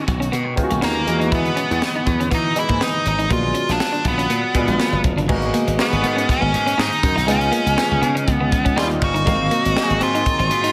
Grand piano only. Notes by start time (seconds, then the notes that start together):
Already playing: D#3 G#3 B3 C#4 F#4
0.56 D#3 G#3 B3 C#4 F4
0.63 F#4
1.06 E3 G#3 B3 D#4 F#4
2.55 E3 G#3 B3 D#4 G#4
3.30 F#3 G#3 B3 D4 F4
4.54 F#3 G#3 B3 D4 F4
5.28 G#3 A#3 B3 D#4 F#4
5.79 G#3 B3 D#4 F#4 A#4
7.27 G#3 B3 C#4 D#4 F4
7.77 G#3 B3 C#4 D#4 G#4
8.76 G3 A#3 C#4 D#4 E4
8.83 F4
9.26 F#3 A#3 C4 D#4 F5
9.76 F#3 A#3 C4 D#4 F#4
9.83 G#4